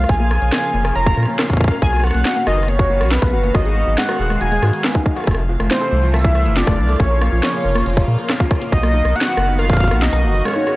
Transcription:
Already playing: F4 F5
0.04 cross-stick
0.09 A#1 C#3 F3 C#4 A#4 G#5, kick, closed hi-hat
0.20 A#3
0.31 A#4, cross-stick
0.42 A#1 C#5, closed hi-hat
0.52 A#3, cross-stick, snare, closed hi-hat
0.63 A#4
0.74 F1 A#3
0.85 A#4, cross-stick
0.96 F1 C#5 A#5, closed hi-hat
1.06 A#3, kick, cross-stick
1.09 cross-stick
1.12 cross-stick
1.15 cross-stick
1.17 A#2 A#4, cross-stick
1.20 cross-stick
1.23 cross-stick
1.25 A#3, cross-stick
1.39 A#4, cross-stick, snare, closed hi-hat
1.50 C#5, kick, closed hi-hat
1.53 kick
1.57 kick, cross-stick
1.60 A#3, kick
1.64 kick
1.68 A#4, kick, closed hi-hat
1.82 B1 D#3 A#3 B3 F#4 G#5, kick, closed hi-hat
1.93 F#4, cross-stick
1.96 cross-stick
2.00 cross-stick
2.03 A#4 F#5, cross-stick
2.07 cross-stick
2.11 cross-stick
2.14 B1 A#3, cross-stick, closed hi-hat
2.25 F#4, snare, closed hi-hat
2.36 A#3
2.47 F#1 F#4 D#5, cross-stick
2.58 A#4
2.63 cross-stick
2.68 A#3 C#5, closed hi-hat
2.79 F#4, kick, closed hi-hat
2.90 A#3
3.01 B1 F#4, cross-stick, closed hi-hat
3.03 closed hi-hat
3.06 closed hi-hat
3.09 snare, closed hi-hat
3.11 A#4 B4, closed hi-hat
3.14 closed hi-hat
3.17 closed hi-hat
3.20 B1 A#3, kick, cross-stick, closed hi-hat
3.22 closed hi-hat
3.30 F#1 F#4, closed hi-hat
3.44 A#3, closed hi-hat
3.55 G#1 D#3 G#3 F#4 D#5, kick, cross-stick, closed hi-hat
3.65 G#4, closed hi-hat
3.76 G#3
3.87 G#1 F#4
3.98 G#3 F#5, snare, closed hi-hat
4.09 F#4, cross-stick
4.11 cross-stick
4.14 cross-stick
4.17 D#1 G#4, cross-stick
4.30 G#3, cross-stick
4.41 D#1 F#4 G#5, closed hi-hat
4.52 G#3, closed hi-hat
4.63 G#2 F#4, cross-stick
4.73 G#4, closed hi-hat
4.84 B4, cross-stick, snare, closed hi-hat
4.87 closed hi-hat
4.90 closed hi-hat
4.92 D#4, kick, closed hi-hat
5.00 closed hi-hat
5.03 D#4, kick, closed hi-hat
5.16 F#4, cross-stick, closed hi-hat
5.20 cross-stick
5.24 F1 A4, kick, cross-stick
5.27 C3 E3 F3 A3, cross-stick, closed hi-hat
5.31 cross-stick
5.34 A3, cross-stick
5.49 F4
5.60 F1 A3, cross-stick, closed hi-hat
5.70 E4 C5, snare, closed hi-hat
5.81 A4, cross-stick
5.92 C2 A3
6.03 F4
6.13 A3 E5, cross-stick, closed hi-hat
6.16 closed hi-hat
6.19 closed hi-hat
6.22 E4, kick, closed hi-hat
6.35 A4, cross-stick
6.46 F1 A3, closed hi-hat
6.57 F4 D5, snare, closed hi-hat
6.68 F1 A3, kick, cross-stick, closed hi-hat
6.78 C2 E4
6.89 A4, cross-stick, closed hi-hat
6.93 cross-stick
6.96 A#1 C#3 A#3 F4 C#5, kick, cross-stick, closed hi-hat
7.11 A#4
7.21 A#3, cross-stick
7.32 A#1 F4
7.43 C#5, cross-stick, snare, closed hi-hat
7.54 A#3
7.65 F1 A#4
7.75 A#3, cross-stick
7.86 F1 F4, closed hi-hat
7.90 closed hi-hat
7.93 C#5, kick, cross-stick, closed hi-hat
7.97 closed hi-hat
8.01 closed hi-hat
8.04 A#2 A#3, closed hi-hat
8.18 A#4, closed hi-hat
8.29 A#3, cross-stick, snare, closed hi-hat
8.35 closed hi-hat
8.40 F4, kick
8.51 C#5, kick, cross-stick
8.62 A#3, closed hi-hat
8.72 B1 D#3 B3 F#4 D#5, kick, closed hi-hat
8.83 A#3, cross-stick
8.94 D#4
9.05 B1 A#4, cross-stick, closed hi-hat
9.16 A#3 F#5, closed hi-hat
9.21 snare
9.26 F#4
9.37 F#1 A#3, cross-stick
9.48 D#4
9.59 A#4 F5, cross-stick, closed hi-hat
9.64 cross-stick
9.70 A#3, kick, cross-stick
9.73 kick, cross-stick
9.77 F#4, kick
9.80 kick
9.84 kick
9.88 B1 A#3, kick, cross-stick, closed hi-hat
10.02 D#4 D#5, snare, closed hi-hat
10.13 B1 A#4, cross-stick, closed hi-hat
10.24 F#1 A#3
10.34 F#4, closed hi-hat
10.45 D#3 G#3 B3 C#5, cross-stick, closed hi-hat
10.48 cross-stick
10.51 cross-stick
10.53 D#4, cross-stick
10.56 cross-stick
10.59 cross-stick
10.61 cross-stick
10.64 G#4, cross-stick
10.67 cross-stick

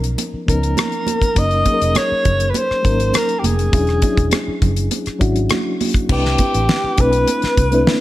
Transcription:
Already playing: B1 F3 B3 C#4 D#4 A#4
0.04 closed hi-hat
0.18 closed hi-hat, muted conga
0.34 muted fingered electric bass stroke
0.46 C#2 F3 B3 C#4 D#4 A#4, kick, closed hi-hat
0.63 closed hi-hat
0.77 cross-stick, closed hi-hat, high conga
0.92 closed hi-hat
1.07 closed hi-hat, high conga
1.22 kick, closed hi-hat
1.34 F#1 F#3 A#3 C#4 D#4 A#4, kick, closed hi-hat, muted conga
1.39 D#5
1.51 closed hi-hat
1.64 F#3 A#3 C#4 D#4 G#4, kick, closed hi-hat, muted conga
1.74 A#4
1.82 F1, closed hi-hat
1.95 C#5, cross-stick, closed hi-hat, high conga
2.12 muted fingered electric bass stroke
2.25 F#1, kick, closed hi-hat, low conga
2.40 closed hi-hat
2.50 B4
2.54 C5, closed hi-hat, muted conga
2.71 muted fingered electric bass stroke, cross-stick
2.83 G#1 F#3 A#3 C#4 D#4 A#4, kick, closed hi-hat, muted conga
3.00 closed hi-hat
3.14 A#4, cross-stick, closed hi-hat, high conga
3.29 closed hi-hat
3.39 G4
3.44 F1 G#4, closed hi-hat, high conga
3.59 closed hi-hat
3.71 E1 F#3 C#4 D4 E4 G#4, kick, closed hi-hat, muted conga
3.87 cross-stick, closed hi-hat
4.01 F#3 C#4 D4 E4 G#4, kick, closed hi-hat, muted conga
4.17 E1, kick, closed hi-hat
4.31 cross-stick, closed hi-hat, high conga
4.48 muted fingered electric bass stroke
4.62 F#1, kick, closed hi-hat, low conga
4.76 closed hi-hat
4.91 closed hi-hat, muted conga
5.06 muted fingered electric bass stroke, cross-stick, closed hi-hat
5.19 G#1 F#3 C#4 D4 E4 F#4, kick, closed hi-hat
5.36 closed hi-hat
5.50 cross-stick, closed hi-hat, high conga
5.80 open hi-hat, high conga
5.94 kick, closed hi-hat
6.08 C2 A3 C4 D4 E4 G4 B4, kick, crash, muted conga
6.25 snare
6.38 kick, closed hi-hat, muted conga
6.54 A1, closed hi-hat
6.69 snare, high conga
6.84 muted fingered electric bass stroke
6.96 B1 A3 C4 D4 E4 B4, kick, closed hi-hat
7.01 B4
7.13 closed hi-hat
7.27 closed hi-hat, muted conga
7.42 muted fingered electric bass stroke, snare, closed hi-hat
7.57 C2, kick, closed hi-hat, muted conga
7.71 A3 C4 D4 E4 B4, closed hi-hat
7.87 snare, high conga

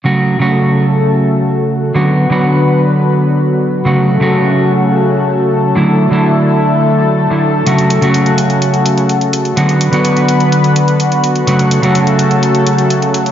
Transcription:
0.04 C#3 F#3 A3 F#4 A4
0.39 C#3 F#3 A3 F#4
1.94 D3 F#3 B3 F#4 B4
2.30 D3 F#3 B3 F#4
3.85 C#3 F#3 A3 F#4 A4
4.20 C#3 F#3 A3 F#4
5.75 D3 F#3 A3 E4
6.11 D3 F#3 A3 E4
7.30 D3 F#3 A3 E4
7.66 C#3 F#3 A3 F#4, closed hi-hat
7.78 closed hi-hat
7.90 closed hi-hat
8.01 C#3 F#3 A3 F#4, closed hi-hat
8.14 closed hi-hat
8.26 closed hi-hat
8.38 closed hi-hat
8.50 closed hi-hat
8.62 closed hi-hat
8.74 closed hi-hat
8.86 closed hi-hat
8.98 closed hi-hat
9.09 closed hi-hat
9.21 closed hi-hat
9.33 closed hi-hat
9.45 closed hi-hat
9.56 D3 F#3 B3 F#4 B4, closed hi-hat
9.69 closed hi-hat
9.81 closed hi-hat
9.92 D3 F#3 B3 F#4, closed hi-hat
10.05 closed hi-hat
10.17 closed hi-hat
10.28 closed hi-hat
10.40 closed hi-hat
10.52 closed hi-hat
10.64 closed hi-hat
10.76 closed hi-hat
10.88 closed hi-hat
11.00 closed hi-hat
11.12 closed hi-hat
11.24 closed hi-hat
11.36 closed hi-hat
11.47 C#3 F#3 A3 F#4 A4, closed hi-hat
11.59 closed hi-hat
11.71 closed hi-hat
11.82 C#3 F#3 A3 F#4, closed hi-hat
11.95 closed hi-hat
12.07 closed hi-hat
12.19 closed hi-hat
12.31 closed hi-hat
12.43 closed hi-hat
12.55 closed hi-hat
12.67 closed hi-hat
12.78 closed hi-hat
12.90 closed hi-hat
13.02 closed hi-hat
13.14 closed hi-hat
13.26 closed hi-hat

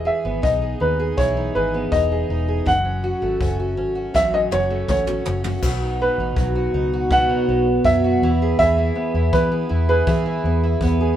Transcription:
Already playing: E3
0.05 G#4 E5
0.25 G#1 B3
0.42 B1 D#4 D#5, kick
0.62 G#4
0.80 D#2 D#4 B4
1.00 G#4
1.17 B1 E3 C#5, kick
1.37 D#4
1.55 G#1 G#4 B4
1.74 B3
1.92 E1 D#4 D#5, kick
2.12 G#4
2.29 E1 D#4
2.48 G#4
2.66 F#1 F#2 F#5, kick
2.85 C#4
3.04 F#4
3.22 G#1 A3
3.41 F#1 C#4, kick
3.60 F#4
3.77 G#1 C#4
3.95 F#4
4.14 A1 F#2 E5, kick, snare
4.33 C#4 D#5
4.51 F#1 F#4 C#5, high tom
4.70 A3
4.88 A1 C#4 C#5, kick, mid tom
5.07 F#4, mid tom
5.25 F#1 C#4, floor tom
5.44 F#4, floor tom
5.62 B1 B2 F#4, kick, crash
5.82 D#4
6.01 B3 B4
6.18 A1 D#4
6.36 B1 F#3, kick
6.56 F#4
6.74 C#2 D#4
6.93 F#4
7.11 B2 F#4 F#5, kick
7.29 D#4
7.48 B1 B3
7.85 F#2 F#3 E5, kick
8.04 F#4
8.22 E2 E3
8.42 G#4
8.59 E2 E3 G#4 E5, kick
8.78 E4
8.95 B3
9.14 E2 E4
9.33 E3 B3 B4, kick
9.52 G#4
9.69 E2 E4
9.89 G#4 B4
10.07 E3 G#4, kick
10.26 E4
10.44 E2 B3
10.63 E4
10.81 E2 B3, kick
11.01 G#4

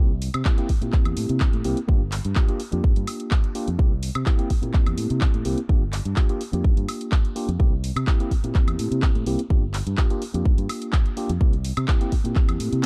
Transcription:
Already playing: C2 A#3 C4
0.00 E4 G4
0.22 open hi-hat
0.34 C3, closed hi-hat, high woodblock
0.45 A#3 C4 E4 G4, kick, clap
0.58 A#3 C4 E4 G4, closed hi-hat
0.69 muted fingered electric bass stroke, kick, open hi-hat
0.81 A#2 A#3 C4 E4 G4, closed hi-hat
0.92 kick, clap
1.05 E2, closed hi-hat, high woodblock
1.17 A2, open hi-hat
1.29 C3, closed hi-hat
1.40 kick, clap
1.53 A2, closed hi-hat
1.64 C2 A#3 C4 E4 G4, open hi-hat
1.77 closed hi-hat
1.88 G1 A#3 D4 F4 G4, kick
2.12 clap, open hi-hat
2.25 G2, closed hi-hat
2.35 A#3 D4 F4 G4, kick, clap
2.48 A#3 D4 F4 G4, closed hi-hat
2.60 open hi-hat
2.72 F2 A#3 D4 F4 G4, closed hi-hat
2.84 G2, kick
2.96 G2, closed hi-hat
3.07 open hi-hat, high woodblock
3.20 closed hi-hat
3.31 kick, clap
3.44 closed hi-hat
3.55 A#3 D4 F4 G4, open hi-hat
3.68 F2, closed hi-hat
3.78 A#3 C4 E4 G4, kick
4.03 open hi-hat
4.15 C3, closed hi-hat, high woodblock
4.26 A#3 C4 E4 G4, kick, clap
4.38 A#3 C4 E4 G4, closed hi-hat
4.50 muted fingered electric bass stroke, kick, open hi-hat
4.62 A#2 A#3 C4 E4 G4, closed hi-hat
4.74 kick, clap
4.87 E2, closed hi-hat, high woodblock
4.98 A2, open hi-hat
5.10 C3, closed hi-hat
5.21 kick, clap
5.34 A2, closed hi-hat
5.45 C2 A#3 C4 E4 G4, open hi-hat
5.58 closed hi-hat
5.69 G1 A#3 D4 F4 G4, kick
5.93 clap, open hi-hat
6.05 G2, closed hi-hat
6.16 A#3 D4 F4 G4, kick, clap
6.29 A#3 D4 F4 G4, closed hi-hat
6.41 open hi-hat
6.52 F2 A#3 D4 F4 G4, closed hi-hat
6.64 G2, kick
6.77 G2, closed hi-hat
6.89 open hi-hat, high woodblock
7.01 closed hi-hat
7.12 kick, clap
7.25 closed hi-hat
7.35 A#3 D4 F4 G4, open hi-hat
7.48 F2, closed hi-hat
7.59 C2 A#3 C4 E4 G4, kick
7.84 open hi-hat
7.96 C3, closed hi-hat, high woodblock
8.07 A#3 C4 E4 G4, kick, clap
8.20 A#3 C4 E4 G4, closed hi-hat
8.31 muted fingered electric bass stroke, kick, open hi-hat
8.43 A#2 A#3 C4 E4 G4, closed hi-hat
8.55 kick, clap
8.68 E2, closed hi-hat, high woodblock
8.79 A2, open hi-hat
8.91 C3, closed hi-hat
9.02 kick, clap
9.15 A2, closed hi-hat
9.26 C2 A#3 C4 E4 G4, open hi-hat
9.39 closed hi-hat
9.50 G1 A#3 D4 F4 G4, kick
9.74 clap, open hi-hat
9.87 G2, closed hi-hat
9.97 A#3 D4 F4 G4, kick, clap
10.10 A#3 D4 F4 G4, closed hi-hat
10.22 open hi-hat
10.34 F2 A#3 D4 F4 G4, closed hi-hat
10.45 G2, kick
10.58 G2, closed hi-hat
10.69 open hi-hat, high woodblock
10.82 closed hi-hat
10.93 kick, clap
11.06 closed hi-hat
11.17 A#3 D4 F4 G4, open hi-hat
11.29 F2, closed hi-hat
11.41 A#3 C4 E4 G4, kick
11.53 closed hi-hat
11.64 open hi-hat
11.77 C3, closed hi-hat, high woodblock
11.88 A#3 C4 E4 G4, kick, clap
12.01 A#3 C4 E4 G4, closed hi-hat
12.12 muted fingered electric bass stroke, kick, open hi-hat
12.24 A#2 A#3 C4 E4 G4, closed hi-hat
12.36 kick, clap
12.49 E2, closed hi-hat, high woodblock
12.60 A2, open hi-hat
12.72 C3, closed hi-hat

